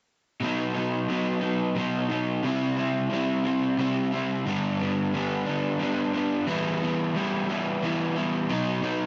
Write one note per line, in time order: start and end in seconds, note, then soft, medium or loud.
0.40 1.07 B2 medium
0.40 0.77 F#3 medium
0.40 0.75 B3 medium
0.44 0.73 D#4 medium
0.74 1.08 F#3 soft
0.74 1.09 B3 soft
0.74 1.10 D#4 medium
1.08 1.74 B2 medium
1.08 1.43 F#3 medium
1.08 1.42 B3 medium
1.08 1.40 D#4 medium
1.41 1.76 F#3 soft
1.41 1.77 B3 medium
1.41 1.78 D#4 medium
1.75 2.41 B2 medium
1.75 2.12 F#3 medium
1.75 2.10 B3 medium
1.75 2.08 D#4 medium
2.09 2.43 F#3 soft
2.09 2.43 B3 soft
2.09 2.41 D#4 medium
2.43 3.09 C3 medium
2.43 2.80 G3 medium
2.43 2.77 C4 medium
2.43 2.76 E4 medium
2.77 3.11 G3 soft
2.77 3.12 C4 medium
2.77 3.13 E4 medium
3.10 3.76 C3 medium
3.10 3.48 G3 medium
3.10 3.45 C4 medium
3.10 3.43 E4 medium
3.44 3.79 G3 soft
3.44 3.79 C4 medium
3.44 3.80 E4 medium
3.77 4.44 C3 medium
3.77 4.15 G3 medium
3.77 4.13 C4 medium
3.77 4.11 E4 medium
4.12 4.47 G3 medium
4.12 4.45 C4 medium
4.12 4.44 E4 medium
4.46 5.13 G2 medium
4.46 5.12 D3 medium
4.46 4.82 G3 medium
4.46 4.81 B3 medium
4.46 4.78 D4 medium
4.80 5.14 G3 soft
4.80 5.15 B3 medium
4.80 5.16 D4 medium
5.14 5.78 D3 medium
5.14 5.48 G3 medium
5.14 5.48 B3 medium
5.14 5.45 D4 medium
5.46 5.80 G3 soft
5.46 5.82 B3 medium
5.46 5.82 D4 medium
5.80 6.46 D3 medium
5.80 6.16 G3 medium
5.80 6.15 B3 medium
5.80 6.13 D4 medium
6.14 6.47 G3 soft
6.14 6.49 B3 medium
6.14 6.46 D4 medium
6.47 7.14 E3 medium
6.47 6.84 G3 medium
6.47 6.83 B3 medium
6.47 6.81 E4 medium
6.82 7.15 G3 soft
6.82 7.16 B3 medium
6.82 7.17 E4 medium
7.15 7.81 E3 medium
7.15 7.51 G3 medium
7.15 7.50 B3 medium
7.15 7.48 E4 medium
7.49 7.82 G3 soft
7.49 7.83 B3 soft
7.49 7.84 E4 medium
7.82 8.48 E3 medium
7.82 8.18 G3 medium
7.82 8.16 B3 medium
7.82 8.15 E4 medium
8.16 8.49 G3 medium
8.16 8.49 B3 medium
8.16 8.48 E4 medium
8.49 8.81 B2 medium
8.49 8.82 F#3 medium
8.49 8.82 B3 medium
8.49 8.83 D#4 medium
8.82 9.06 B2 medium
8.82 9.06 F#3 medium
8.82 9.06 B3 medium
8.82 9.06 D#4 medium